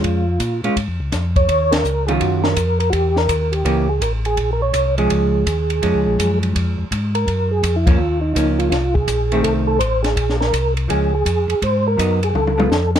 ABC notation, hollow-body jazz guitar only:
X:1
M:4/4
L:1/8
Q:"Swing" 1/4=166
K:Bbm
V:1 name="Hollow-body jazz guitar"
[A,DF] z2 [A,DF] z4 | z3 [E,G,DF]3 z2 | z4 [=E,B,^C=G] z3 | z3 [F,A,D]3 z2 |
[F,A,D]4- [F,A,D] z3 | z3 [F,B,D] z2 [F,B,D]2 | z3 [E,=A,C]3 z2 | z4 [F,A,D] z3 |
z2 [G,_CE] z2 [A,CF] z2 |]